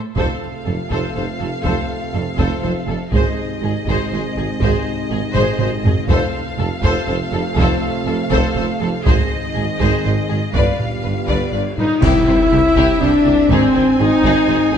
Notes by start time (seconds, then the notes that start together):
0.17 F1 F2 C3 A3 C4 F4 A4 C5 F5, taiko
0.66 F1 F2 A4
0.90 F1 F2 A4 C5, taiko
1.15 F1 F2 A4 C5
1.39 F1 F2 A4
1.64 F1 F2 A4 C5, taiko
2.13 F1 F2 A4
2.38 F1 F2 A4 C5, taiko
2.63 F1 F2 A4 C5
2.88 F1 F2 A4
3.11 G#1 G#2 C3 G#3 C4 D#4 G#4 C5 D#5, taiko
3.62 G#1 G#2 G#4
3.87 G#1 G#2 G#4 C5, taiko
4.12 G#1 G#2 G#4 C5
4.36 G#1 G#2 G#4
4.60 G#1 G#2 G#4 C5, taiko
5.10 G#1 G#2 G#4
5.35 G#1 G#2 G#4 C5, taiko low-mid
5.59 G#1 G#2 G#4 C5, taiko low-mid
5.84 G#1 G#2 G#4, taiko low
6.09 F1 F2 C3 A3 C4 F4 A4 C5 F5, taiko
6.58 F1 F2 A4
6.83 F1 F2 A4 C5, taiko
7.08 F1 F2 A4 C5
7.33 F1 F2 A4
7.57 F1 F2 A4 C5, taiko
8.07 F1 F2 A4
8.31 F1 F2 A4 C5, taiko
8.56 F1 F2 A4 C5
8.81 F1 F2 A4
9.05 G#1 G#2 D#3 G#3 C4 D#4 G#4 C5 D#5, taiko
9.55 G#1 G#2 G#4
9.80 G#1 G#2 G#4 C5, taiko
10.04 G#1 G#2 G#4 C5
10.29 G#1 G#2 G#4
10.54 G1 G2 D3 G3 B3 F4 B4 D5 F5, taiko
10.80 taiko low-mid
11.03 G1 G2 B4
11.28 G1 G2 B4 D5, taiko
11.53 G1 G2 B4 D5
11.76 G1 G2 D#4 B4 D#5, taiko low-mid
12.01 C2 G2 C3 C4 E4 G4 E5, concert bass drum, taiko, crash
12.28 C2 C3 G4 C5
12.52 C2 C3 G4
12.76 C2 C3 E4 G4, taiko
13.00 C2 C3 D4 G4 C5 D5
13.25 C2 C3 G4
13.50 G#1 G#2 C4 D#4 G#4 C5 G#5, taiko
13.74 G#1 G#2 G#4 C5
13.99 G#1 G#2 D#4 G#4 D#5
14.23 G#1 G#2 D#4 G#4, taiko
14.48 G#1 G#2 G#4 C5
14.72 G#1 G#2 D#4 G#4 D#5